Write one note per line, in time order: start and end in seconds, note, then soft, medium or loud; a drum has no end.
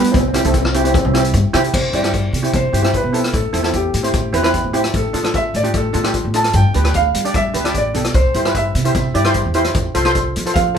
0.00 0.12 G3 medium
0.00 0.13 B3 medium
0.00 0.14 B3 medium
0.00 0.14 D4 medium
0.00 0.14 G4 medium
0.04 closed hi-hat medium
0.12 0.41 C2 loud
0.12 0.18 C4 medium
0.12 kick loud
0.12 closed hi-hat medium
0.20 0.26 C4 medium
0.28 0.34 C4 medium
0.34 0.40 C4 medium
0.34 0.41 C4 medium
0.34 0.40 E4 medium
0.34 0.40 G4 medium
0.34 cross-stick medium
0.34 closed hi-hat medium
0.43 0.98 C2 medium
0.43 0.49 C4 medium
0.43 0.62 C4 medium
0.43 0.63 E4 medium
0.43 0.63 A4 medium
0.43 closed hi-hat medium
0.50 0.57 C4 soft
0.50 kick medium
0.50 closed hi-hat medium
0.59 0.66 C4 medium
0.65 0.73 C4 medium
0.65 cross-stick medium
0.74 0.80 C4 medium
0.74 0.80 E4 medium
0.74 0.81 G4 medium
0.74 closed hi-hat medium
0.81 0.88 C4 soft
0.81 1.02 C4 medium
0.81 1.02 E4 medium
0.81 1.02 G4 medium
0.81 closed hi-hat medium
0.89 0.96 C4 medium
0.94 1.04 C4 medium
0.94 kick loud
0.94 closed hi-hat medium
1.05 1.31 C2 medium
1.05 1.09 C4 medium
1.11 1.15 C4 medium
1.11 1.38 C4 medium
1.11 1.38 E4 medium
1.11 1.38 G4 medium
1.15 1.25 C4 medium
1.15 cross-stick medium
1.15 closed hi-hat medium
1.24 closed hi-hat medium
1.34 1.43 G2 loud
1.34 kick medium
1.34 closed hi-hat medium
1.53 1.72 C3 medium
1.53 1.74 C4 medium
1.53 1.74 E4 medium
1.53 1.74 G4 loud
1.53 cross-stick medium
1.53 closed hi-hat medium
1.64 closed hi-hat medium
1.74 1.83 C3 medium
1.74 1.95 C5 medium
1.74 kick loud
1.74 crash medium
1.93 2.29 G2 medium
1.93 2.00 C4 medium
1.93 2.00 E4 medium
1.93 2.00 G4 medium
1.93 2.56 D5 medium
1.93 closed hi-hat medium
2.02 2.27 C4 medium
2.02 2.28 E4 medium
2.02 2.28 G4 medium
2.02 cross-stick medium
2.02 closed hi-hat medium
2.14 kick medium
2.14 closed hi-hat medium
2.33 2.51 C3 medium
2.33 closed hi-hat medium
2.42 2.61 C4 medium
2.42 2.62 E4 medium
2.42 2.62 G4 medium
2.42 closed hi-hat medium
2.53 2.71 C3 medium
2.53 2.96 C5 medium
2.53 kick loud
2.53 closed hi-hat medium
2.73 3.00 G2 medium
2.73 2.79 C4 medium
2.73 2.80 E4 medium
2.73 2.80 G4 medium
2.73 closed hi-hat medium
2.82 3.01 C4 medium
2.82 3.01 E4 medium
2.82 3.01 G4 medium
2.82 cross-stick medium
2.82 closed hi-hat medium
2.94 3.36 B4 medium
2.94 kick medium
2.94 closed hi-hat medium
3.04 3.30 B2 medium
3.13 3.33 C4 medium
3.13 3.33 E4 medium
3.13 3.34 A4 medium
3.13 closed hi-hat medium
3.24 cross-stick medium
3.24 closed hi-hat medium
3.33 3.43 A2 medium
3.33 3.76 A4 medium
3.33 kick loud
3.33 closed hi-hat medium
3.53 3.89 E2 medium
3.53 3.60 C4 medium
3.53 3.60 E4 medium
3.53 3.60 A4 medium
3.53 closed hi-hat medium
3.62 3.87 C4 medium
3.62 3.87 E4 medium
3.62 3.88 A4 medium
3.62 cross-stick medium
3.62 closed hi-hat medium
3.74 4.71 G4 medium
3.74 kick medium
3.74 closed hi-hat medium
3.94 4.12 A2 medium
3.94 closed hi-hat medium
4.03 4.21 C4 medium
4.03 4.22 E4 medium
4.03 4.22 C5 medium
4.03 closed hi-hat medium
4.14 4.31 A2 medium
4.14 kick loud
4.14 closed hi-hat medium
4.33 4.61 E2 medium
4.33 4.39 C4 medium
4.33 4.40 E4 medium
4.33 4.40 B4 medium
4.33 closed hi-hat medium
4.43 4.62 C4 medium
4.43 4.62 E4 medium
4.43 4.62 B4 loud
4.43 cross-stick medium
4.43 closed hi-hat medium
4.54 kick medium
4.54 closed hi-hat medium
4.64 4.90 A2 medium
4.73 4.94 C4 medium
4.73 4.94 E4 medium
4.73 4.94 G4 medium
4.73 closed hi-hat medium
4.84 cross-stick medium
4.84 closed hi-hat medium
4.94 5.03 A2 medium
4.94 5.32 A4 medium
4.94 kick loud
4.94 closed hi-hat medium
5.13 5.49 A2 medium
5.13 5.20 D4 medium
5.13 5.20 F4 medium
5.13 5.20 A4 medium
5.13 closed hi-hat medium
5.23 5.48 D4 medium
5.23 5.48 F4 medium
5.23 5.48 A4 medium
5.23 cross-stick medium
5.23 closed hi-hat medium
5.34 5.55 E5 medium
5.34 kick medium
5.34 closed hi-hat medium
5.54 5.72 A2 medium
5.54 5.74 D5 medium
5.54 closed hi-hat medium
5.63 5.82 D4 medium
5.63 5.82 F4 medium
5.63 5.82 G4 medium
5.63 closed hi-hat medium
5.74 5.92 A2 medium
5.74 6.13 A4 medium
5.74 kick loud
5.74 closed hi-hat medium
5.93 6.21 A2 medium
5.93 6.00 D4 medium
5.93 6.00 F4 medium
5.93 6.00 A4 medium
5.93 closed hi-hat medium
6.04 6.22 D4 medium
6.04 6.22 F4 medium
6.04 6.23 G4 medium
6.04 cross-stick medium
6.04 closed hi-hat medium
6.14 kick medium
6.14 closed hi-hat medium
6.25 6.51 A2 medium
6.34 6.54 D4 medium
6.34 6.54 F4 medium
6.34 6.55 A4 medium
6.34 6.54 A5 medium
6.34 closed hi-hat medium
6.44 cross-stick medium
6.44 closed hi-hat medium
6.53 6.63 G2 medium
6.53 6.92 G5 loud
6.53 kick loud
6.53 closed hi-hat medium
6.74 7.10 D2 medium
6.74 6.81 D4 medium
6.74 6.81 G4 medium
6.74 6.81 B4 medium
6.74 closed hi-hat medium
6.84 7.08 D4 medium
6.84 7.08 G4 medium
6.84 7.09 B4 medium
6.84 cross-stick medium
6.84 closed hi-hat medium
6.94 7.32 F5 medium
6.94 kick medium
6.94 closed hi-hat medium
7.14 7.32 G3 medium
7.14 closed hi-hat medium
7.25 7.43 D4 medium
7.25 7.43 G4 medium
7.25 7.43 D5 medium
7.25 closed hi-hat medium
7.34 7.52 G3 medium
7.34 7.72 E5 loud
7.34 kick loud
7.34 closed hi-hat medium
7.54 7.72 D2 medium
7.54 7.60 D4 medium
7.54 7.60 G4 medium
7.54 7.61 B4 medium
7.54 closed hi-hat medium
7.64 7.83 D4 medium
7.64 7.83 G4 medium
7.64 7.83 D5 medium
7.64 cross-stick medium
7.64 closed hi-hat medium
7.74 7.93 A1 medium
7.74 8.17 D5 medium
7.74 kick medium
7.74 closed hi-hat medium
7.94 8.13 B1 medium
7.94 8.14 D4 medium
7.94 8.15 G4 medium
7.94 8.15 A4 medium
7.94 closed hi-hat medium
8.04 cross-stick medium
8.04 closed hi-hat medium
8.14 8.24 C2 medium
8.14 8.52 C5 medium
8.14 kick loud
8.14 closed hi-hat medium
8.34 8.70 G2 medium
8.34 8.41 E4 medium
8.34 8.41 G4 medium
8.34 8.42 C5 medium
8.34 closed hi-hat medium
8.45 8.69 E4 medium
8.45 8.69 G4 medium
8.45 8.69 B4 medium
8.45 cross-stick medium
8.45 closed hi-hat medium
8.55 9.12 E5 medium
8.55 kick medium
8.55 closed hi-hat medium
8.75 8.93 C3 loud
8.75 closed hi-hat medium
8.85 9.03 E4 medium
8.85 9.03 G4 medium
8.85 9.03 C5 medium
8.85 closed hi-hat medium
8.95 9.13 C3 medium
8.95 kick loud
8.95 closed hi-hat medium
9.14 9.42 G2 medium
9.14 9.21 E4 medium
9.14 9.21 G4 medium
9.14 9.21 D5 medium
9.14 closed hi-hat medium
9.24 9.43 E4 medium
9.24 9.43 G4 medium
9.24 9.44 C5 loud
9.24 cross-stick medium
9.24 closed hi-hat medium
9.34 kick medium
9.34 closed hi-hat medium
9.46 9.72 E2 medium
9.54 9.75 E4 medium
9.54 9.75 G4 medium
9.54 9.75 C5 medium
9.54 closed hi-hat medium
9.64 cross-stick medium
9.64 closed hi-hat medium
9.74 9.84 F2 medium
9.74 kick loud
9.74 closed hi-hat medium
9.95 10.31 C2 medium
9.95 10.01 F4 medium
9.95 10.01 A4 medium
9.95 10.01 C5 medium
9.95 closed hi-hat medium
10.05 10.30 F4 medium
10.05 10.30 A4 medium
10.05 10.30 C5 medium
10.05 cross-stick medium
10.05 closed hi-hat medium
10.15 kick medium
10.15 closed hi-hat medium
10.36 10.54 F3 medium
10.36 closed hi-hat medium
10.46 10.64 F4 medium
10.46 10.64 A4 medium
10.46 10.64 C5 medium
10.46 closed hi-hat medium
10.54 10.73 F3 medium
10.54 10.78 F5 medium
10.54 kick loud
10.54 closed hi-hat medium
10.74 10.78 F4 medium
10.74 10.78 A4 medium
10.74 10.78 C5 medium